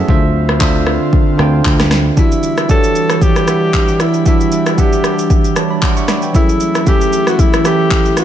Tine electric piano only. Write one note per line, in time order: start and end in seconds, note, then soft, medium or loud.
0.00 0.10 F#3 medium
0.00 0.11 C#4 medium
0.00 0.22 G#4 medium
0.00 0.11 A4 medium
0.00 0.10 B4 medium
0.00 0.10 C#5 loud
0.00 0.10 E5 loud
0.00 0.10 F#5 medium
0.07 0.51 D3 medium
0.07 0.51 D4 medium
0.07 0.51 F4 medium
0.07 0.52 C5 medium
0.07 0.52 E5 medium
0.59 1.24 D3 medium
0.59 1.24 D4 medium
0.59 1.24 F4 medium
0.59 1.25 C5 medium
0.59 1.25 E5 loud
1.37 2.02 D3 medium
1.37 2.02 D4 medium
1.37 2.03 F4 medium
1.37 2.03 C5 medium
1.37 2.03 G5 medium
2.16 2.59 E3 medium
2.16 2.60 D4 medium
2.16 2.60 F#4 medium
2.16 2.60 G4 medium
2.16 2.61 E5 medium
2.68 3.32 E3 medium
2.68 3.33 D4 medium
2.68 3.33 F#4 medium
2.68 3.33 G4 medium
2.68 3.34 C#5 medium
3.46 4.11 E3 medium
3.46 4.11 D4 medium
3.46 4.12 G4 medium
3.46 4.12 E5 medium
3.46 4.11 F#5 medium
4.25 4.68 E3 medium
4.25 4.68 D4 medium
4.25 4.69 F#4 medium
4.25 4.69 G4 medium
4.25 4.70 E5 medium
4.76 5.41 E3 medium
4.76 5.41 D4 medium
4.76 5.42 G4 medium
4.76 5.42 E5 medium
4.76 5.42 F#5 medium
5.56 5.70 C#5 medium
5.56 5.70 A5 medium
5.70 5.82 D5 medium
5.70 5.82 B5 medium
5.82 5.96 F#5 medium
5.82 5.96 D6 medium
5.97 6.08 E5 medium
5.97 6.08 C#6 medium
6.08 6.22 D5 medium
6.08 6.22 B5 medium
6.23 6.48 B4 medium
6.23 6.48 G5 medium
6.33 6.77 F#3 medium
6.33 6.77 C#4 medium
6.33 6.77 G#4 medium
6.33 6.78 A4 medium
6.33 6.78 E5 medium
6.85 7.50 E3 medium
6.85 7.50 C#4 medium
6.85 7.50 E4 medium
6.85 7.51 A4 medium
6.85 7.51 E5 medium
7.63 8.24 E3 medium
7.63 8.24 C#4 medium
7.63 8.24 E4 medium
7.63 8.24 A4 medium
7.63 8.24 E5 medium